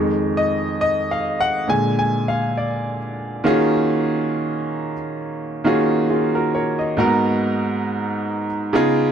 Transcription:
0.00 1.63 F2 medium
0.00 1.64 D#3 medium
0.00 1.64 G#3 medium
0.37 0.80 D#5 medium
0.81 0.87 D#5 medium
1.11 1.40 F5 medium
1.40 1.66 F#5 loud
1.68 3.40 A#2 medium
1.68 3.40 D3 medium
1.68 3.40 G#3 medium
1.68 1.97 G#5 loud
1.99 2.28 G#5 medium
2.28 2.57 F5 medium
2.57 2.97 D5 medium
3.44 4.92 D#3 medium
3.44 4.92 A#3 medium
3.44 4.93 C#4 medium
3.44 4.93 F4 medium
3.44 4.93 F#4 medium
3.44 4.94 G#4 loud
5.64 6.77 D#3 medium
5.64 6.77 A#3 medium
5.64 6.77 C#4 medium
5.64 6.09 F4 medium
5.64 6.09 F#4 medium
5.64 6.08 G#4 loud
6.10 6.32 F4 medium
6.10 6.32 G#4 medium
6.35 6.53 F#4 medium
6.35 6.53 A#4 medium
6.54 6.77 A#4 medium
6.54 6.76 C#5 medium
6.79 7.19 D#5 medium
6.97 8.45 G#2 medium
6.97 7.04 A#3 medium
6.97 8.46 D#4 medium
6.97 8.46 F#4 medium
6.97 8.47 A#4 loud
7.04 8.49 B3 medium
8.73 9.10 C#3 medium
8.73 9.11 B3 medium
8.73 9.11 D#4 medium
8.73 9.11 F4 medium
8.73 9.12 G#4 loud

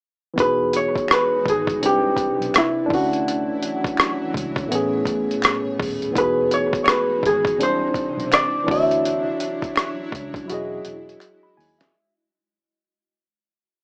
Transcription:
0.34 1.77 E3 medium
0.34 1.80 E3 medium
0.34 1.80 G#3 medium
0.34 1.78 B3 medium
0.34 1.81 F#4 medium
0.38 0.97 E1 medium
0.38 1.79 D#4 medium
0.38 1.81 D#4 medium
0.38 1.80 F#4 medium
0.38 0.76 B4 loud
0.38 kick loud
0.38 closed hi-hat medium
0.42 1.82 G#4 medium
0.73 1.12 C#5 medium
0.73 closed hi-hat medium
0.96 kick medium
0.96 closed hi-hat soft
1.08 finger snap medium
1.08 cross-stick loud
1.08 closed hi-hat medium
1.13 1.49 B4 loud
1.46 1.76 G#1 medium
1.46 1.81 G#4 medium
1.46 kick medium
1.46 closed hi-hat medium
1.67 kick loud
1.67 closed hi-hat soft
1.80 2.30 C2 medium
1.80 2.89 C3 medium
1.80 2.90 C4 medium
1.80 2.85 D4 medium
1.80 4.69 E4 medium
1.80 2.91 E4 medium
1.80 closed hi-hat medium
1.85 2.58 G4 loud
1.85 2.92 B4 medium
2.17 kick medium
2.17 closed hi-hat medium
2.40 2.52 B1 medium
2.40 closed hi-hat soft
2.54 2.93 E4 loud
2.54 finger snap medium
2.54 cross-stick loud
2.54 closed hi-hat medium
2.86 4.66 A3 medium
2.86 4.67 C#4 medium
2.86 4.65 D4 medium
2.90 3.50 D2 medium
2.90 4.70 E3 medium
2.90 4.69 F#3 medium
2.90 4.68 E4 medium
2.90 4.33 F#4 medium
2.90 6.13 C#5 medium
2.90 kick loud
2.90 open hi-hat soft
2.95 4.70 F#4 medium
3.13 closed hi-hat soft
3.28 closed hi-hat medium
3.63 closed hi-hat medium
3.84 kick medium
3.84 closed hi-hat soft
3.97 finger snap medium
3.97 cross-stick loud
3.97 closed hi-hat medium
4.34 4.65 C#2 medium
4.34 kick medium
4.34 closed hi-hat medium
4.56 kick loud
4.56 closed hi-hat soft
4.67 6.10 A2 medium
4.67 6.12 A3 medium
4.71 5.01 A1 medium
4.71 6.14 B2 medium
4.71 6.15 A3 medium
4.71 6.12 B3 medium
4.71 6.14 C#4 medium
4.71 6.14 G#4 medium
4.71 closed hi-hat medium
4.75 6.15 G#4 medium
5.05 5.36 A1 medium
5.05 kick medium
5.05 closed hi-hat medium
5.31 closed hi-hat soft
5.42 finger snap medium
5.42 cross-stick loud
5.42 closed hi-hat medium
5.80 6.09 D#1 loud
5.80 kick loud
5.80 open hi-hat medium
6.02 closed hi-hat soft
6.11 7.55 E3 medium
6.11 7.56 B3 medium
6.15 6.75 E1 loud
6.15 7.59 E3 medium
6.15 7.59 G#3 medium
6.15 7.57 D#4 medium
6.15 7.59 D#4 medium
6.15 7.59 F#4 medium
6.15 7.58 F#4 medium
6.15 6.53 B4 medium
6.15 kick loud
6.15 closed hi-hat medium
6.19 7.59 G#4 medium
6.51 6.83 C#5 medium
6.51 closed hi-hat medium
6.73 kick medium
6.73 closed hi-hat soft
6.84 6.89 C#5 medium
6.84 finger snap medium
6.84 cross-stick loud
6.89 7.26 B4 medium
6.89 closed hi-hat medium
7.23 7.53 G#1 loud
7.23 7.62 G#4 medium
7.23 kick medium
7.23 closed hi-hat medium
7.45 kick loud
7.45 closed hi-hat soft
7.57 8.07 C2 loud
7.57 8.67 C3 medium
7.57 8.68 C4 medium
7.57 8.65 D4 medium
7.57 8.67 E4 medium
7.57 closed hi-hat medium
7.62 8.69 C5 medium
7.62 8.34 C5 loud
7.94 kick medium
7.94 closed hi-hat medium
8.17 8.30 B1 medium
8.17 closed hi-hat soft
8.32 8.71 D5 loud
8.32 finger snap medium
8.32 cross-stick loud
8.32 closed hi-hat medium
8.64 10.43 E3 medium
8.64 10.45 D4 medium
8.68 9.28 D2 medium
8.68 10.47 F#3 medium
8.68 10.47 D4 medium
8.68 10.47 E4 medium
8.68 10.45 E4 medium
8.68 10.47 F#4 medium
8.68 10.47 C#5 medium
8.68 10.10 E5 loud
8.68 kick loud
8.68 open hi-hat medium
8.73 10.48 C#5 medium
8.91 closed hi-hat soft
9.05 closed hi-hat medium
9.40 closed hi-hat medium
9.62 kick medium
9.62 closed hi-hat soft
9.76 finger snap medium
9.76 cross-stick loud
9.76 closed hi-hat medium
10.12 10.43 C#2 medium
10.12 kick loud
10.12 closed hi-hat medium
10.34 kick loud
10.34 closed hi-hat soft
10.45 11.89 F#3 medium
10.45 11.90 E4 medium
10.45 11.92 E4 medium
10.49 10.79 E1 loud
10.49 11.93 G#3 medium
10.49 11.91 F#4 medium
10.49 11.93 F#4 medium
10.49 11.92 G#4 medium
10.49 11.93 D#5 medium
10.49 closed hi-hat medium
10.54 10.87 D#5 medium
10.85 11.15 E1 medium
10.85 closed hi-hat medium
11.09 closed hi-hat soft
11.20 finger snap medium
11.20 closed hi-hat medium
11.43 11.57 B5 medium
11.57 11.88 D#2 medium
11.57 11.78 G#5 medium
11.57 open hi-hat medium
11.79 12.13 E5 medium
11.79 snare loud
11.79 closed hi-hat soft

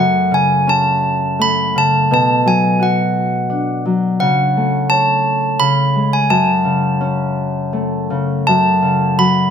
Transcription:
0.00 2.16 F#2 medium
0.00 1.39 A3 soft
0.00 0.67 C#4 soft
0.00 0.33 F#5 medium
0.31 1.74 C#3 soft
0.31 0.70 G#5 medium
0.67 3.56 C#4 soft
0.67 1.43 A5 medium
1.39 4.57 A3 medium
1.39 1.77 B5 medium
1.76 2.16 C#3 soft
1.76 2.12 A5 medium
2.11 4.26 B2 medium
2.11 2.48 A5 medium
2.46 3.84 F#3 soft
2.46 2.82 G#5 medium
2.80 5.23 F#4 medium
2.80 3.83 F#5 medium
3.50 4.26 D4 soft
3.85 4.26 F#3 soft
4.20 5.59 C#3 medium
4.20 4.92 F#5 medium
4.57 6.02 A3 soft
4.90 6.82 C#5 medium
4.90 5.62 A5 medium
5.60 6.35 C#3 medium
5.60 6.14 B5 medium
5.96 6.35 G#3 soft
6.13 6.29 G#5 medium
6.30 8.47 F#2 medium
6.30 8.06 A5 medium
6.65 8.09 C#3 soft
7.01 9.50 C#4 medium
7.73 9.50 A3 soft
8.10 8.51 C#3 soft
8.47 9.50 F#2 medium
8.47 9.20 A5 medium
8.82 9.50 C#3 soft
9.18 9.50 F#3 soft
9.18 9.50 B5 medium

